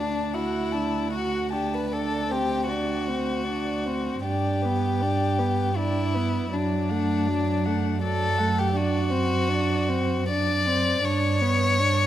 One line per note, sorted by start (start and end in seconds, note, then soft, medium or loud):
0.00 4.20 D2 soft
0.00 0.35 D4 medium
0.00 0.36 D4 soft
0.00 0.36 A5 soft
0.34 1.12 E4 soft
0.34 0.76 F#4 soft
0.34 0.74 F#5 soft
0.72 1.13 D4 soft
0.72 1.11 A5 soft
1.11 1.51 F#4 medium
1.11 1.54 F#4 soft
1.11 1.52 F#5 soft
1.51 1.91 D4 soft
1.51 1.75 G4 soft
1.51 1.89 A5 soft
1.74 1.94 B4 soft
1.90 2.33 D4 soft
1.90 2.32 A4 medium
1.90 2.30 D5 soft
2.29 2.72 C4 soft
2.29 2.68 G4 medium
2.29 2.69 C5 soft
2.67 3.10 D4 soft
2.67 4.21 F#4 medium
2.67 3.08 D5 soft
3.06 3.47 C4 soft
3.06 3.44 C5 soft
3.45 3.87 D5 soft
3.49 3.89 D4 soft
3.85 4.25 C4 soft
3.85 4.23 C5 soft
4.24 6.48 G2 soft
4.24 4.66 D4 soft
4.24 5.78 G4 medium
4.24 4.63 D5 soft
4.62 5.04 B3 soft
4.62 5.03 B4 soft
5.01 5.41 D4 soft
5.01 5.40 D5 soft
5.39 5.76 B3 soft
5.39 5.75 B4 soft
5.76 6.17 D4 soft
5.76 6.54 E4 medium
5.76 6.16 D5 soft
6.14 6.52 B3 soft
6.14 6.50 B4 soft
6.50 11.01 F#2 soft
6.50 6.93 F#3 soft
6.50 8.03 D4 medium
6.50 6.91 D5 soft
6.89 7.30 A3 soft
6.89 7.28 F#5 soft
7.26 7.69 F#3 soft
7.26 7.67 D5 soft
7.66 8.02 A3 soft
7.66 8.01 F#5 soft
8.02 8.41 F#3 soft
8.02 8.60 A4 medium
8.02 8.39 D5 soft
8.38 8.74 A3 soft
8.38 8.72 F#5 soft
8.58 8.77 G4 medium
8.73 9.13 D4 soft
8.73 10.29 F#4 medium
8.73 9.11 D5 soft
9.10 9.50 C4 soft
9.10 9.50 C5 soft
9.48 9.91 D4 soft
9.48 9.90 D5 soft
9.89 10.29 C4 soft
9.89 10.30 C5 soft
10.30 10.68 D4 soft
10.30 11.06 D5 medium
10.30 10.69 D5 soft
10.67 11.03 C4 soft
10.67 11.05 C5 soft
11.03 12.07 G2 medium
11.03 11.43 D4 soft
11.03 12.07 C#5 medium
11.03 11.43 D5 soft
11.41 11.81 B3 soft
11.41 11.80 B4 soft
11.79 12.07 D4 soft
11.79 12.07 D5 soft